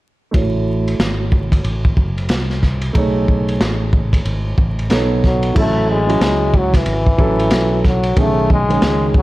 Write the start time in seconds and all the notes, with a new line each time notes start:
0.31 A1 A3 E4 F#4, kick, ride
0.36 C#5
0.88 ride
0.99 G#1, snare, hi-hat pedal, ride
1.32 kick
1.52 kick, ride
1.64 A1, ride
1.85 kick
1.97 F#1, kick
2.18 ride
2.29 C2, snare, hi-hat pedal, ride
2.50 snare
2.63 kick, snare
2.82 ride
2.93 B1 A3 D#4 G#4, kick, ride
2.98 C#5
3.28 kick
3.48 ride
3.60 A1, snare, hi-hat pedal, ride
3.93 kick
4.13 kick, ride
4.25 G#1, ride
4.58 A1, kick
4.79 ride
4.90 B1 B3 D#4 A4 C#5, snare, hi-hat pedal, ride
5.24 F#3, kick, snare
5.43 ride
5.54 A1 F#3 A3 C#4 E4 A4, kick, crash
5.91 G#3
6.07 F#3 C#4 E4 F#4, ride
6.21 C#2, snare, hi-hat pedal, ride
6.54 F#3, kick
6.74 E3, kick, snare, ride
6.86 G#1, ride
7.06 kick
7.18 A1 F#3 C#4 E4 A4, kick
7.39 ride
7.51 B1, snare, hi-hat pedal, ride
7.84 F#3, kick, snare
8.03 ride
8.16 B1 D#3 A3 C#4 G#4, kick, ride
8.21 A3
8.50 G#3, kick
8.68 D#3 G#3 C#4 G#4, ride
8.82 C#2, snare, hi-hat pedal, ride
9.14 F#3, kick